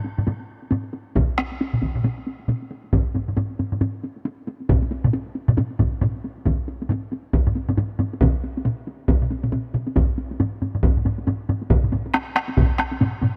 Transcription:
0.04 taiko high medium
0.17 taiko low-mid loud
0.17 taiko high soft
0.27 taiko low-mid medium
0.27 taiko high medium
0.40 taiko high soft
0.62 taiko high soft
0.71 taiko low-mid loud
0.71 taiko high medium
0.84 taiko high soft
0.93 taiko high medium
1.16 taiko medium
1.16 taiko mid loud
1.16 taiko high medium
1.38 taiko rim medium
1.38 taiko high medium
1.52 taiko high soft
1.61 taiko high medium
1.73 taiko mid medium
1.73 taiko high soft
1.82 taiko medium
1.82 taiko high medium
1.96 taiko mid loud
1.96 taiko high soft
2.04 taiko mid medium
2.04 taiko high medium
2.18 taiko high soft
2.27 taiko high soft
2.40 taiko high soft
2.48 taiko mid loud
2.48 taiko high medium
2.62 taiko high soft
2.71 taiko high soft
2.84 taiko high soft
2.93 taiko medium
2.93 taiko low-mid medium
2.93 taiko high medium
3.15 taiko low-mid medium
3.15 taiko high soft
3.28 taiko low-mid medium
3.28 taiko high soft
3.37 taiko low-mid medium
3.37 taiko high medium
3.50 taiko high soft
3.59 taiko low-mid medium
3.59 taiko high medium
3.72 taiko low-mid medium
3.72 taiko high soft
3.81 taiko low-mid medium
3.81 taiko high medium
3.95 taiko high soft
4.04 taiko high medium
4.16 taiko high soft
4.25 taiko high medium
4.47 taiko high medium
4.60 taiko high soft
4.69 taiko loud
4.69 taiko low-mid loud
4.69 taiko mid loud
4.69 taiko high medium
4.82 taiko high medium
4.91 taiko high medium
5.04 taiko low-mid loud
5.04 taiko mid loud
5.04 taiko high soft
5.13 taiko high medium
5.26 taiko high soft
5.35 taiko high medium
5.48 taiko low-mid loud
5.48 taiko mid loud
5.48 taiko high soft
5.57 taiko low-mid loud
5.57 taiko mid medium
5.57 taiko high medium
5.71 taiko high soft
5.79 taiko medium
5.79 taiko low-mid loud
5.79 taiko mid medium
5.79 taiko high medium
5.92 taiko high soft
6.01 taiko low-mid loud
6.01 taiko mid loud
6.01 taiko high medium
6.16 taiko high soft
6.25 taiko high soft
6.38 taiko high soft
6.45 taiko medium
6.45 taiko low-mid medium
6.45 taiko high medium
6.68 taiko high medium
6.82 taiko high medium
6.89 taiko low-mid loud
6.89 taiko high medium
7.12 taiko high medium
7.33 taiko loud
7.33 taiko high medium
7.47 taiko low-mid medium
7.55 taiko high medium
7.69 taiko low-mid medium
7.69 taiko high medium
7.77 taiko low-mid medium
7.77 taiko high medium
7.99 taiko low-mid medium
7.99 taiko high medium
8.13 taiko high medium
8.21 taiko loud
8.21 taiko mid medium
8.21 taiko high medium
8.44 taiko high medium
8.57 taiko high medium
8.65 taiko mid loud
8.65 taiko high medium
8.87 taiko high medium
9.08 taiko loud
9.08 taiko high medium
9.22 taiko mid loud
9.31 taiko high medium
9.44 taiko mid medium
9.44 taiko high medium
9.52 taiko mid loud
9.52 taiko high medium
9.74 taiko mid loud
9.74 taiko high medium
9.87 taiko high medium
9.96 taiko loud
9.96 taiko low-mid medium
9.96 taiko high medium
10.18 taiko high medium
10.31 taiko high soft
10.40 taiko low-mid loud
10.40 taiko high medium
10.62 taiko low-mid medium
10.62 taiko high soft
10.75 taiko low-mid medium
10.83 taiko loud
10.83 taiko low-mid medium
10.83 taiko high medium
10.97 taiko low-mid medium
11.05 taiko low-mid medium
11.05 taiko high soft
11.18 taiko high soft
11.27 taiko low-mid loud
11.27 taiko high medium
11.49 taiko low-mid medium
11.49 taiko high soft
11.62 taiko high soft
11.70 taiko loud
11.70 taiko low-mid medium
11.70 taiko mid medium
11.70 taiko high medium
11.83 taiko low-mid medium
11.83 taiko mid medium
11.92 taiko low-mid medium
11.92 taiko mid medium
11.92 taiko high soft
12.06 taiko high soft
12.14 taiko rim medium
12.14 taiko high medium
12.35 taiko rim medium
12.35 taiko high soft
12.48 taiko high soft
12.57 taiko loud
12.57 taiko low-mid medium
12.57 taiko mid medium
12.57 taiko high medium
12.79 taiko rim medium
12.79 taiko high soft
12.91 taiko high soft
13.01 taiko low-mid medium
13.01 taiko mid medium
13.01 taiko high medium
13.22 taiko low-mid loud
13.22 taiko mid loud
13.22 taiko high soft

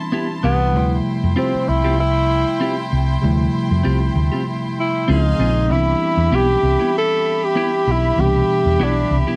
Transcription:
0.00 0.40 E3 medium
0.00 0.40 G3 medium
0.00 0.40 B3 medium
0.00 0.39 C4 medium
0.00 0.41 D4 medium
0.00 0.71 E4 medium
0.00 0.71 A5 medium
0.00 0.72 C6 medium
0.12 0.27 B3 medium
0.12 0.27 E4 medium
0.12 0.28 G4 medium
0.43 0.76 C2 medium
0.43 0.71 C3 soft
0.43 0.75 E3 soft
0.43 0.74 G3 soft
0.43 0.55 B3 soft
0.43 1.02 B3 loud
0.43 0.76 B3 soft
0.43 0.55 E4 medium
0.43 0.76 E4 soft
0.43 0.56 G4 medium
0.72 0.99 D2 medium
0.72 3.17 C3 medium
0.72 3.18 F3 medium
0.72 3.19 G3 medium
0.72 3.19 A3 medium
0.72 5.04 E4 medium
0.72 5.04 G5 medium
0.72 5.04 C6 medium
0.77 3.20 E4 medium
1.24 1.34 F2 medium
1.36 1.51 C4 medium
1.36 1.70 C4 medium
1.36 1.51 F4 medium
1.36 1.51 G4 medium
1.54 muted fingered electric bass stroke soft
1.68 2.43 C2 medium
1.68 1.99 E4 medium
1.84 1.95 C4 soft
1.84 1.94 F4 soft
1.84 1.94 G4 medium
2.00 2.88 E4 medium
2.60 2.75 C4 medium
2.60 2.75 F4 medium
2.60 2.76 G4 medium
2.93 3.16 C2 medium
3.21 3.47 D2 medium
3.21 5.04 C3 medium
3.21 5.05 F3 medium
3.21 5.05 G3 medium
3.21 5.06 A3 medium
3.25 5.06 E4 medium
3.71 3.82 F2 medium
3.84 4.08 C2 medium
3.84 3.98 C4 medium
3.84 3.99 F4 medium
3.84 3.99 G4 medium
4.16 4.28 D2 medium
4.32 4.42 C4 soft
4.32 4.42 F4 soft
4.32 4.41 G4 soft
4.80 5.12 E4 medium
5.08 5.32 C#2 medium
5.08 5.70 C#3 medium
5.08 5.70 F3 medium
5.08 5.70 G#3 medium
5.08 5.22 C4 medium
5.08 5.66 C4 medium
5.08 5.16 D4 soft
5.08 5.73 D#4 medium
5.08 5.23 F4 medium
5.08 5.70 G#4 medium
5.08 5.23 G#4 medium
5.08 5.70 F5 medium
5.08 5.69 C6 medium
5.16 5.74 D#4 medium
5.39 5.70 A#1 medium
5.39 5.50 C4 soft
5.39 5.51 F4 soft
5.39 5.51 G#4 medium
5.68 5.93 C2 medium
5.68 5.76 D#3 soft
5.68 8.13 G3 soft
5.68 8.14 B3 medium
5.68 8.12 C4 medium
5.68 9.36 G4 medium
5.68 9.36 E5 medium
5.68 9.36 B5 medium
5.72 8.16 E3 medium
5.72 8.14 D4 medium
5.72 6.37 E4 medium
6.17 6.28 E2 medium
6.32 6.55 B1 medium
6.32 6.46 B3 medium
6.32 6.47 E4 medium
6.32 6.47 G4 medium
6.32 6.96 G4 loud
6.63 6.76 C2 medium
6.79 6.90 B3 soft
6.79 6.89 E4 soft
6.79 6.89 G4 soft
6.98 7.46 A4 loud
7.45 7.93 G4 medium
7.55 7.70 B3 medium
7.55 7.70 E4 medium
7.55 7.71 G4 medium
7.87 8.10 B1 medium
7.92 8.22 E4 medium
8.16 8.41 C2 medium
8.16 9.36 B2 medium
8.16 9.36 E3 medium
8.16 9.36 G3 medium
8.16 9.36 B3 medium
8.21 9.36 D4 medium
8.21 8.85 G4 medium
8.66 8.76 E2 medium
8.80 9.03 B1 medium
8.80 8.94 B3 medium
8.80 8.94 E4 medium
8.80 8.95 G4 medium
8.84 9.17 D4 medium
9.11 9.23 C2 medium
9.27 9.36 B3 soft
9.27 9.36 E4 soft
9.27 9.36 G4 soft

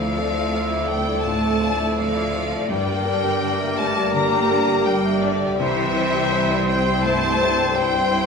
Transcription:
0.00 1.22 D2 soft
0.00 2.67 D2 medium
0.00 2.73 D3 medium
0.00 0.89 F3 medium
0.00 2.53 F3 medium
0.00 1.43 A3 soft
0.00 2.67 A3 medium
0.00 0.94 C4 soft
0.00 2.70 C4 medium
0.00 0.16 E4 soft
0.00 0.28 E4 soft
0.00 2.73 F4 soft
0.00 0.33 A4 soft
0.00 2.41 A4 medium
0.00 2.53 A4 medium
0.00 1.12 C5 soft
0.00 5.55 D5 medium
0.00 0.88 F5 medium
0.00 2.39 E6 medium
0.00 2.74 E6 soft
0.16 0.34 F4 soft
0.16 0.46 A4 soft
0.16 1.06 D5 soft
0.34 0.65 E4 soft
0.34 0.53 A4 soft
0.34 1.79 A4 soft
0.52 0.71 F4 medium
0.52 0.83 D5 soft
0.52 2.73 F5 soft
0.70 0.89 E4 medium
0.70 0.90 E5 soft
0.70 2.15 D6 soft
0.86 1.26 G3 medium
0.86 1.07 D4 medium
0.86 1.19 D5 soft
0.86 1.24 G5 medium
1.06 1.25 E4 soft
1.06 1.37 E4 soft
1.06 1.61 D5 soft
1.22 1.55 A2 soft
1.22 1.97 A3 medium
1.22 5.16 D4 soft
1.22 1.42 F4 medium
1.22 1.97 A5 medium
1.42 2.74 A3 soft
1.42 1.73 E4 soft
1.42 1.62 A4 medium
1.60 1.79 F4 medium
1.60 1.91 A4 soft
1.60 2.52 D5 soft
1.79 1.98 E4 medium
1.79 2.10 E4 soft
1.79 2.74 A4 medium
1.97 2.71 F3 medium
1.97 2.16 D4 medium
1.97 2.27 D5 soft
1.97 2.71 F5 medium
2.14 2.34 E4 medium
2.14 2.34 E5 soft
2.14 3.58 D6 medium
2.33 2.52 F4 medium
2.33 2.64 D5 medium
2.52 2.70 E4 soft
2.52 2.70 A4 medium
2.52 3.05 D5 medium
2.69 5.55 G1 medium
2.69 4.09 G2 medium
2.69 5.62 G2 medium
2.69 3.78 G3 medium
2.69 8.26 G3 medium
2.69 2.87 G3 medium
2.69 5.55 G3 medium
2.69 5.55 D4 medium
2.69 5.54 G4 medium
2.69 5.55 A#4 medium
2.69 3.76 G5 medium
2.69 5.54 D6 medium
2.87 5.62 G3 medium
2.87 3.07 A#3 medium
2.87 3.17 G4 soft
3.05 3.25 D4 medium
3.05 3.35 A#4 medium
3.05 3.94 D5 medium
3.23 5.61 G4 medium
3.23 3.53 G4 soft
3.23 3.43 G4 medium
3.41 3.61 D4 medium
3.41 3.71 D5 medium
3.41 3.76 G5 medium
3.59 3.78 A#3 medium
3.59 3.78 E5 soft
3.59 5.03 D6 medium
3.77 3.96 G3 medium
3.77 4.14 A3 medium
3.77 4.07 D5 medium
3.77 4.85 G5 medium
3.77 4.14 A5 medium
3.95 4.14 A#3 medium
3.95 4.25 G4 medium
3.95 4.49 D5 medium
4.13 5.61 D3 medium
4.13 4.44 D3 soft
4.13 4.86 A#3 medium
4.13 4.31 D4 medium
4.13 4.85 A#5 loud
4.32 5.62 A#3 medium
4.32 4.61 G4 medium
4.32 4.51 G4 medium
4.50 4.69 D4 medium
4.50 4.79 A#4 medium
4.50 5.39 D5 medium
4.68 4.87 A#3 medium
4.68 4.97 G4 soft
4.68 5.62 A#4 medium
4.85 5.22 G3 medium
4.85 5.06 G3 medium
4.85 5.16 D5 medium
4.85 5.22 G5 medium
5.04 5.23 A#3 medium
5.04 5.23 E5 medium
5.04 5.62 D6 medium
5.21 5.58 D3 medium
5.21 5.41 D4 medium
5.21 5.59 D5 medium
5.21 5.52 D5 medium
5.21 6.31 G5 medium
5.40 5.59 G4 medium
5.40 5.59 G4 soft
5.40 5.62 D5 medium
5.57 8.26 C2 medium
5.57 7.02 C2 medium
5.57 8.26 C3 medium
5.57 6.66 E3 medium
5.57 5.75 G3 medium
5.57 8.26 C4 medium
5.57 8.26 E4 medium
5.57 8.26 C5 medium
5.57 6.67 E5 loud
5.57 8.26 C6 medium
5.61 8.26 C5 medium
5.76 7.23 C4 medium
5.76 5.95 C4 medium
5.76 6.07 G4 medium
5.95 6.14 E4 medium
5.95 6.87 C5 medium
5.95 6.26 C5 medium
6.14 6.43 G4 medium
6.14 6.32 G4 medium
6.14 7.59 G4 medium
6.32 6.51 E4 medium
6.32 6.62 C5 medium
6.32 6.68 G5 medium
6.50 6.69 C4 medium
6.50 6.69 D5 soft
6.50 7.94 C6 medium
6.69 7.05 G3 medium
6.69 6.88 G3 medium
6.69 6.99 C5 medium
6.69 7.05 G5 medium
6.69 7.76 G5 medium
6.86 7.06 C4 medium
6.86 7.16 G4 medium
6.86 7.41 C5 medium
7.04 7.35 G2 soft
7.04 8.26 G3 medium
7.04 7.76 A3 medium
7.04 7.23 E4 medium
7.04 7.76 A5 loud
7.24 8.26 C4 medium
7.24 7.53 G4 soft
7.24 7.42 G4 medium
7.42 7.60 E4 medium
7.42 8.26 C5 medium
7.42 7.70 C5 medium
7.59 7.77 C4 medium
7.59 7.87 G4 medium
7.59 8.26 G4 medium
7.75 7.94 G3 medium
7.75 8.26 G3 medium
7.75 8.05 C5 medium
7.75 8.26 G5 loud
7.75 8.12 G5 medium
7.95 8.13 C4 medium
7.95 8.13 D5 soft
7.95 8.26 C6 medium
8.12 8.26 E4 medium
8.12 8.26 C5 medium
8.12 8.26 G5 medium

